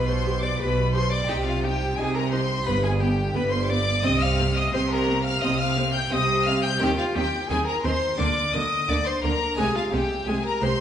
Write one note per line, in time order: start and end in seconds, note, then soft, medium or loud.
0.00 0.51 B1 medium
0.00 0.48 B2 medium
0.00 0.51 B2 medium
0.00 1.22 D4 medium
0.00 1.23 F4 medium
0.00 1.24 G4 medium
0.00 0.10 B4 medium
0.07 0.44 C5 medium
0.07 0.42 C6 medium
0.07 0.42 C6 loud
0.24 0.32 G4 medium
0.41 0.59 D5 medium
0.41 0.59 D6 medium
0.41 0.60 D6 loud
0.59 1.20 B1 medium
0.59 1.20 B2 medium
0.59 1.18 B2 medium
0.59 0.67 G4 medium
0.59 0.93 B4 medium
0.59 0.94 B5 medium
0.59 0.94 B5 loud
0.93 1.01 G4 medium
0.93 1.11 C5 loud
0.93 1.10 C6 medium
0.93 1.11 C6 loud
1.10 1.30 D5 medium
1.10 1.28 D6 medium
1.10 1.29 D6 loud
1.24 2.60 C4 medium
1.24 2.61 D#4 medium
1.24 2.62 G4 medium
1.24 1.45 G5 loud
1.28 1.89 C2 medium
1.28 1.89 C3 medium
1.28 1.87 C3 medium
1.28 1.36 D#4 medium
1.28 1.46 G4 loud
1.28 1.35 G5 loud
1.45 1.65 F4 medium
1.45 1.62 F5 medium
1.45 1.63 F5 medium
1.62 1.71 D#4 medium
1.62 1.97 G4 medium
1.62 1.96 G5 loud
1.62 1.97 G5 medium
1.97 2.58 C2 medium
1.97 2.58 C3 loud
1.97 2.55 C3 medium
1.97 2.06 D#4 medium
1.97 2.17 G#4 loud
1.97 2.15 G#5 loud
2.14 2.30 A#4 loud
2.14 2.31 A#5 medium
2.14 2.32 A#5 loud
2.31 2.40 D#4 medium
2.31 2.68 C5 loud
2.31 2.66 C6 loud
2.61 3.98 B3 medium
2.61 3.98 F4 medium
2.61 3.99 G4 medium
2.61 2.83 B5 loud
2.65 3.27 G1 medium
2.65 3.24 G2 medium
2.65 3.27 G2 medium
2.65 2.74 B3 medium
2.65 2.85 B4 loud
2.65 2.83 B5 loud
2.83 3.02 G#4 medium
2.83 2.90 G#5 medium
2.83 2.91 G#5 loud
3.00 3.09 B3 medium
3.00 3.34 G4 medium
3.00 3.34 G5 medium
3.00 3.35 G5 loud
3.34 3.96 G1 medium
3.34 3.93 G2 medium
3.34 3.96 G2 loud
3.34 3.43 B3 medium
3.34 3.51 B4 loud
3.34 3.41 B5 loud
3.34 3.52 B5 loud
3.51 3.71 C5 loud
3.51 3.69 C6 loud
3.51 3.70 C6 loud
3.68 3.77 B3 medium
3.68 4.06 D5 loud
3.68 4.03 D6 loud
3.68 4.04 D6 loud
4.00 6.74 C4 medium
4.00 4.11 C4 medium
4.00 6.75 D#4 medium
4.00 6.76 G4 medium
4.00 4.21 D#6 loud
4.04 4.65 C2 loud
4.04 4.62 C3 medium
4.04 4.65 C3 loud
4.04 4.23 D#5 loud
4.04 4.22 D#6 loud
4.21 4.56 F5 loud
4.21 4.55 F6 loud
4.21 4.56 F6 loud
4.39 4.47 C4 medium
4.55 4.73 D#5 loud
4.55 4.62 D#6 medium
4.55 4.74 D#6 loud
4.72 5.34 C2 medium
4.72 5.31 C3 medium
4.72 5.34 C3 loud
4.72 4.81 C4 medium
4.72 4.81 C5 loud
4.72 4.90 C6 loud
4.72 4.91 C6 loud
4.90 5.24 A#4 loud
4.90 5.25 A#5 medium
4.90 5.25 A#5 loud
5.07 5.15 C4 medium
5.24 5.43 F5 loud
5.24 5.42 F6 loud
5.24 5.43 F6 loud
5.41 6.03 C2 medium
5.41 6.00 C3 medium
5.41 6.03 C3 medium
5.41 5.51 C4 medium
5.41 5.59 D#5 loud
5.41 5.59 D#6 loud
5.41 5.60 D#6 loud
5.59 5.93 F5 loud
5.59 5.94 F6 loud
5.77 5.85 C4 medium
5.94 6.13 G5 loud
5.94 6.11 G6 loud
5.94 6.12 G6 loud
6.11 6.72 C2 medium
6.11 6.70 C3 medium
6.11 6.73 C3 loud
6.11 6.19 C4 medium
6.11 6.47 D#5 loud
6.11 6.45 D#6 loud
6.46 6.54 C4 medium
6.46 6.62 F5 loud
6.46 6.63 F6 loud
6.46 6.53 F6 loud
6.63 6.70 G5 loud
6.63 6.80 G6 loud
6.63 6.81 G6 loud
6.76 8.12 C4 medium
6.76 8.13 D#4 medium
6.76 8.14 G4 medium
6.80 6.89 D#2 loud
6.80 7.11 D#3 medium
6.80 6.89 D#3 loud
6.80 6.89 C4 medium
6.80 6.97 G4 loud
6.80 6.87 G5 loud
6.80 6.98 G5 loud
6.98 7.17 F4 medium
6.98 7.05 F5 medium
6.98 7.06 F5 loud
7.15 7.24 D#2 medium
7.15 7.46 D#3 medium
7.15 7.24 D#3 loud
7.15 7.23 C4 medium
7.15 7.49 G4 loud
7.15 7.49 G5 loud
7.49 7.58 D#2 medium
7.49 7.80 D#3 medium
7.49 7.58 D#3 loud
7.49 7.57 C4 medium
7.49 7.66 G#4 loud
7.49 7.56 G#5 loud
7.49 7.66 G#5 loud
7.66 7.86 A#4 loud
7.66 7.83 A#5 loud
7.66 7.75 A#5 loud
7.84 7.92 D#2 medium
7.84 8.15 D#3 medium
7.84 7.92 D#3 medium
7.84 7.92 C4 medium
7.84 8.19 C5 loud
7.84 8.18 C6 loud
8.14 9.51 A#3 medium
8.14 9.52 F4 medium
8.14 9.53 A#4 medium
8.18 8.27 D2 medium
8.18 8.50 D3 medium
8.18 8.27 D3 loud
8.18 8.27 A#3 medium
8.18 8.55 D5 loud
8.18 8.53 D6 loud
8.53 8.62 D2 medium
8.53 8.84 D3 medium
8.53 8.62 D3 medium
8.53 8.62 A#3 medium
8.53 8.90 D#5 loud
8.53 8.88 D#6 loud
8.88 8.97 D2 medium
8.88 9.20 D3 medium
8.88 8.97 D3 loud
8.88 8.97 A#3 medium
8.88 9.08 D5 loud
8.88 9.05 D6 loud
8.88 8.95 D6 loud
9.05 9.23 C5 loud
9.05 9.12 C6 loud
9.05 9.23 C6 loud
9.23 9.32 D2 medium
9.23 9.54 D3 medium
9.23 9.32 D3 medium
9.23 9.31 A#3 medium
9.23 9.57 A#4 loud
9.23 9.57 A#5 loud
9.23 9.58 A#5 loud
9.54 10.80 C4 medium
9.54 10.80 D#4 medium
9.54 10.80 G#4 medium
9.58 9.66 C2 loud
9.58 9.89 C3 medium
9.58 9.66 C3 medium
9.58 9.66 G#3 medium
9.58 9.77 G#4 loud
9.58 9.75 G#5 loud
9.75 9.92 F4 loud
9.75 9.92 F5 medium
9.75 9.83 F5 loud
9.92 10.01 C2 medium
9.92 10.24 C3 medium
9.92 10.01 C3 medium
9.92 10.01 G#3 medium
9.92 10.29 G4 medium
9.92 10.27 G5 medium
9.92 10.27 G5 loud
10.27 10.35 C2 medium
10.27 10.36 C3 medium
10.27 10.59 C3 medium
10.27 10.35 G#3 medium
10.27 10.44 G#4 loud
10.27 10.44 G#5 loud
10.44 10.64 A#4 loud
10.44 10.61 A#5 loud
10.44 10.53 A#5 loud
10.61 10.70 C2 medium
10.61 10.70 C3 medium
10.61 10.80 C3 medium
10.61 10.69 G#3 medium
10.61 10.80 C5 loud
10.61 10.80 C6 loud